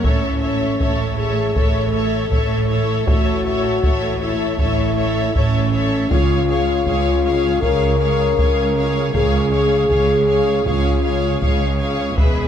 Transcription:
0.03 double bass section A1, cello section A2, french horn section C#4, viola section A4, violin section C#5 E5, taiko
0.41 viola section A4, violin section C#5 E5
0.79 double bass section A1, cello section A2, viola section A4, violin section C#5 E5, taiko
1.16 french horn section G#4, viola section A4, violin section C#5 E5
1.56 double bass section A1, cello section A2, french horn section A4, viola section A4, violin section C#5 E5, taiko
1.94 viola section A4, violin section C#5 E5
2.31 double bass section A1, cello section A2, viola section A4, violin section C#5 E5, taiko
2.70 viola section A4, violin section C#5 E5
3.06 double bass section A1, cello section A2, french horn section F#4, viola section A4, violin section C#5 E5, taiko
3.46 viola section A4, violin section C#5 E5
3.83 double bass section A1, cello section A2, viola section A4, violin section C#5 E5, taiko
4.21 french horn section E4, viola section A4, violin section C#5 E5
4.59 double bass section A1, cello section A2, french horn section E4, viola section A4, violin section C#5 E5, taiko
4.97 viola section A4, violin section C#5 E5
5.34 double bass section A1, cello section A2, french horn section C#4, viola section A4, violin section C#5 E5, taiko
5.72 viola section A4, violin section C#5 E5
6.11 double bass section C#2, cello section C#2, french horn section F4, viola section G#4, violin section C#5 F5, taiko
6.49 viola section G#4, violin section C#5 F5
6.86 double bass section C#2, cello section C#2, viola section G#4, violin section C#5 F5, taiko
7.24 viola section G#4, violin section C#5 F5
7.62 cello section C#2, double bass section C#2, viola section G#4, french horn section A#4, violin section C#5 F5, taiko
8.00 viola section G#4, violin section C#5 F5
8.38 cello section C#2, double bass section C#2, viola section G#4, violin section C#5 F5, taiko
8.77 viola section G#4, violin section C#5 F5
9.14 double bass section C#2, cello section C#2, french horn section G#4, viola section G#4, violin section C#5 F5, taiko
9.52 viola section G#4, violin section C#5 F5
9.90 double bass section C#2, cello section C#2, viola section G#4, violin section C#5 F5, taiko
10.28 viola section G#4, violin section C#5 F5
10.65 double bass section C#2, cello section C#2, french horn section F4, viola section G#4, violin section C#5 F5, taiko
11.04 viola section G#4, violin section C#5 F5
11.41 double bass section C#2, cello section C#2, viola section G#4, violin section C#5 F5, taiko
11.79 viola section G#4, violin section C#5 F5
12.17 double bass section E1, cello section E2, french horn section G#3, viola section G#4, violin section B4 E5, taiko

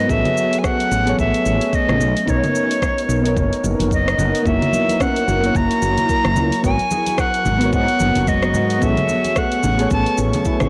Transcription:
Already playing: ambient pad F#3, synth keys B3 F#4 A#4 C#5 D#5 F#5, flute D#5
0.07 fretless electric bass A1, ambient pad A3 C#4, synth keys B3 G#4, flute E5, kick, cabasa
0.11 synth keys A4 C#5
0.25 open hi-hat, low conga, cabasa
0.37 cabasa
0.53 open hi-hat, cabasa
0.59 flute G#5
0.64 flute F#5, kick, cross-stick, cabasa
0.80 open hi-hat, cabasa
0.91 fretless electric bass A1, cabasa
1.06 synth keys B3 G#4 A4 C#5, open hi-hat, cabasa
1.19 fretless electric bass A1, flute E5, kick, cabasa
1.34 open hi-hat, cabasa
1.46 fretless electric bass A1, cabasa
1.61 open hi-hat, cabasa
1.73 flute D#5, kick, cabasa
1.88 fretless electric bass A1, cross-stick, low conga, cabasa
2.00 fretless electric bass B1, ambient pad B3 D#4 A#4, cabasa
2.17 open hi-hat, cabasa
2.26 fretless electric bass B1, synth keys B3 D#4 A#4 C#5, flute C#5, kick, cabasa
2.44 open hi-hat, low conga, cabasa
2.55 cabasa
2.71 open hi-hat, cabasa
2.82 kick, cross-stick, cabasa
2.98 open hi-hat, cabasa
3.09 fretless electric bass B1, cabasa
3.21 synth keys B3 D#4
3.26 synth keys A#4 C#5, open hi-hat, cabasa
3.37 fretless electric bass F#1, kick, cabasa
3.53 open hi-hat, cabasa
3.64 fretless electric bass F#1, cabasa
3.79 fretless electric bass F#1, open hi-hat, cabasa
3.91 flute D#5, kick, cabasa
4.05 synth keys B3 D#4 A#4 D#5, cross-stick, open hi-hat, cabasa
4.17 fretless electric bass F#1, synth keys B3 D#4 A#4 F#5, low conga, cabasa
4.35 open hi-hat, cabasa
4.43 fretless electric bass F#1, ambient pad F#3 E4 A#4, synth keys A#3 E4, synth pluck A#3, flute E5, synth texture C#6, kick, cabasa
4.47 synth keys F#4 C#5
4.62 open hi-hat, low conga, cabasa
4.73 high conga, cabasa
4.89 open hi-hat, high conga, cabasa
5.00 synth pluck C#4, flute F#5, kick, cross-stick, cabasa
5.16 open hi-hat, cabasa
5.27 fretless electric bass F#1, synth pluck F#4, low conga, cabasa
5.43 synth keys A#3 E4 F#4 C#5, open hi-hat, cabasa
5.55 fretless electric bass F#1, flute A#5, kick, cabasa
5.71 open hi-hat, cabasa
5.82 fretless electric bass F#1, synth pluck F#4, cabasa
5.98 open hi-hat, low conga, cabasa
6.09 synth pluck A#4, kick, cabasa
6.25 fretless electric bass F#1, cross-stick, low conga, cabasa
6.36 fretless electric bass C#2, low conga, cabasa
6.52 open hi-hat, cabasa
6.63 fretless electric bass G#1, ambient pad F#3 B3 F#4, synth keys B3 F#4 A#4 C#5, synth pluck B3, flute G#5, kick, cabasa
6.79 open hi-hat, cabasa
6.91 synth pluck G#4, high conga, cabasa
7.06 open hi-hat, high conga, cabasa
7.18 flute F#5, kick, cross-stick, cabasa
7.34 open hi-hat, cabasa
7.45 fretless electric bass G#1, synth pluck G#3, low conga, cabasa
7.58 synth keys B3 F#4, open hi-hat, cabasa
7.63 synth keys A#4 C#5
7.73 fretless electric bass G#2, synth pluck B3, flute F#5, kick, cabasa
7.88 open hi-hat, cabasa
8.00 fretless electric bass F#1, high conga, cabasa
8.15 fretless electric bass F#1, open hi-hat, low conga, cabasa
8.27 synth pluck G#3, flute D#5, kick, cabasa
8.42 synth keys B3 F#4 A#4 D#5, cross-stick, cabasa
8.53 fretless electric bass G#2, synth keys B3 F#4 A#4 F#5, synth pluck B3, low conga, cabasa
8.70 open hi-hat, cabasa
8.79 fretless electric bass A1, synth pluck G#3, ambient pad A3 C#4, synth keys B3 G#4, kick, cabasa
8.83 synth keys A4 C#5, flute E5
8.97 open hi-hat, low conga, cabasa
9.09 high conga, cabasa
9.25 open hi-hat, high conga, cabasa
9.36 synth pluck A3, flute F#5, kick, cross-stick, cabasa
9.52 open hi-hat, cabasa
9.63 fretless electric bass A1, synth pluck C#4, low conga, cabasa
9.78 synth keys B3 G#4 A4 C#5, open hi-hat, cabasa
9.90 fretless electric bass A1, flute A5, kick, cabasa
10.06 open hi-hat, cabasa
10.18 fretless electric bass A1, synth pluck C#4, cabasa
10.33 open hi-hat, low conga, cabasa
10.45 synth pluck E4, kick, cabasa
10.60 fretless electric bass A1, cross-stick, low conga, cabasa

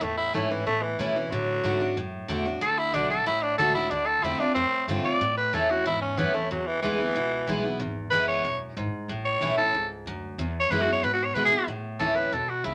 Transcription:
0.01 upright bass E2, steel-string acoustic guitar A2, tenor saxophone A3
0.17 tenor saxophone E4
0.33 upright bass G#2, steel-string acoustic guitar E3 A3 C#4 E4, tenor saxophone A3
0.50 tenor saxophone E3, steel-string acoustic guitar C#4 E4
0.66 steel-string acoustic guitar E2, upright bass A2, tenor saxophone A3
0.82 tenor saxophone E3
0.99 upright bass B2, steel-string acoustic guitar E3 A3 C#4 E4
1.15 tenor saxophone E3, steel-string acoustic guitar C#4 E4
1.31 upright bass A2, steel-string acoustic guitar D3, tenor saxophone F#3
1.64 upright bass G#2, steel-string acoustic guitar D3 A3 D4 F#4
1.80 steel-string acoustic guitar D4 F#4
1.96 upright bass F#2, steel-string acoustic guitar A2
2.28 upright bass E2, steel-string acoustic guitar D3 A3 D4 F#4
2.45 steel-string acoustic guitar D4 F#4
2.61 upright bass D2, steel-string acoustic guitar D3, tenor saxophone A4
2.78 tenor saxophone E4
2.93 upright bass B1, steel-string acoustic guitar D3 A3 D4 F#4, tenor saxophone D4
3.10 steel-string acoustic guitar D4 F#4, tenor saxophone A4
3.26 upright bass A1, steel-string acoustic guitar A2, tenor saxophone E4
3.42 tenor saxophone D4
3.58 upright bass C#2, steel-string acoustic guitar D3 A3 D4 F#4, tenor saxophone A4
3.74 steel-string acoustic guitar D4 F#4, tenor saxophone E4
3.90 upright bass D2, steel-string acoustic guitar D3, tenor saxophone D4
4.06 tenor saxophone A4
4.23 upright bass E2, steel-string acoustic guitar D3 A3 C4 F4, tenor saxophone E4
4.39 steel-string acoustic guitar C4 F4, tenor saxophone D4, muted upright bass stroke
4.55 upright bass F2, steel-string acoustic guitar A2, tenor saxophone C4
4.88 upright bass G2, steel-string acoustic guitar D3 A3 C4 F4
5.04 steel-string acoustic guitar C4 F4, tenor saxophone D5, muted upright bass stroke
5.21 upright bass A2, steel-string acoustic guitar A2
5.37 tenor saxophone B4
5.53 upright bass E2, steel-string acoustic guitar E3 A3 C#4 E4, tenor saxophone A4
5.69 steel-string acoustic guitar C#4 E4, tenor saxophone F#4
5.85 steel-string acoustic guitar E2, upright bass G#2, tenor saxophone E4
6.01 tenor saxophone C#4
6.17 upright bass F#2, steel-string acoustic guitar E3 A3 C#4 E4, tenor saxophone B3
6.34 tenor saxophone A3, steel-string acoustic guitar C#4 E4, muted upright bass stroke
6.51 upright bass E2, steel-string acoustic guitar E2, tenor saxophone F#3
6.67 tenor saxophone E3
6.82 upright bass D2, tenor saxophone E3, steel-string acoustic guitar E3 G#3 B3 E4
6.99 steel-string acoustic guitar B3 E4
7.15 upright bass C#2, steel-string acoustic guitar B2
7.47 upright bass B1, steel-string acoustic guitar E3 G#3 B3 E4
7.64 steel-string acoustic guitar B3 E4
7.80 upright bass G#1, steel-string acoustic guitar E2
8.10 upright bass F#1, steel-string acoustic guitar E3 G#3 B3 E4, tenor saxophone B4
8.28 tenor saxophone C#5
8.44 upright bass E1, steel-string acoustic guitar F#2
8.77 upright bass G#1, steel-string acoustic guitar G#2
8.92 muted upright bass stroke
9.08 upright bass A1, steel-string acoustic guitar A2
9.25 tenor saxophone C#5
9.41 upright bass B1, steel-string acoustic guitar E3 A3 C#4 E4
9.58 steel-string acoustic guitar C#4 E4, tenor saxophone A4, muted upright bass stroke
9.73 upright bass C#2, steel-string acoustic guitar G#2
10.06 upright bass D2, steel-string acoustic guitar F#2
10.38 upright bass E2, steel-string acoustic guitar E2
10.60 tenor saxophone C#5
10.70 upright bass F#2, steel-string acoustic guitar E3 G#3 B3 E4, tenor saxophone B4
10.81 tenor saxophone F#4
10.87 steel-string acoustic guitar B3 E4
10.93 tenor saxophone C#5
11.03 upright bass G#2, steel-string acoustic guitar B2, tenor saxophone B4
11.13 tenor saxophone F#4
11.24 tenor saxophone C#5
11.34 upright bass B2, steel-string acoustic guitar E3 G#3 B3 E4, tenor saxophone B4
11.45 tenor saxophone G#4
11.51 steel-string acoustic guitar B3 E4
11.67 upright bass A2, steel-string acoustic guitar A2
11.99 upright bass D2, steel-string acoustic guitar E3 A3 C#4 E4, tenor saxophone A4
12.15 steel-string acoustic guitar C#4 E4, tenor saxophone B4
12.32 upright bass E2, steel-string acoustic guitar B2, tenor saxophone A4
12.48 tenor saxophone F#4, muted upright bass stroke
12.64 upright bass C#2, steel-string acoustic guitar C#3, tenor saxophone E4

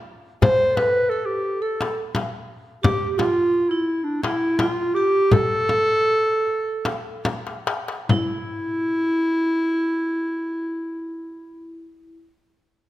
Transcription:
0.42 clarinet C5, vibraphone C5, darbuka dum, frame drum
0.70 vibraphone A4
0.77 clarinet B4, vibraphone B4, darbuka tek, frame drum
1.10 clarinet A4, vibraphone A4, darbuka ka
1.26 clarinet G4
1.62 clarinet A4, vibraphone A4
1.81 darbuka tek, frame drum
2.15 darbuka tek, frame drum
2.83 vibraphone G4, clarinet G4, frame drum, darbuka dum
3.11 clarinet G4
3.17 clarinet F4, vibraphone F4, darbuka tek, frame drum
3.54 darbuka ka
3.69 clarinet E4, vibraphone E4
4.04 clarinet D4
4.22 clarinet E4, vibraphone E4, darbuka tek, frame drum
4.58 clarinet F4, vibraphone F4, darbuka tek, frame drum
4.94 clarinet G4, vibraphone G4
5.32 clarinet A4, vibraphone A4, frame drum, darbuka dum
5.69 frame drum
6.47 darbuka ka
6.85 darbuka tek, frame drum
7.25 darbuka tek, frame drum
7.47 darbuka ka
7.67 darbuka tek
7.88 darbuka ka
8.09 clarinet E4, vibraphone E4, frame drum, darbuka dum

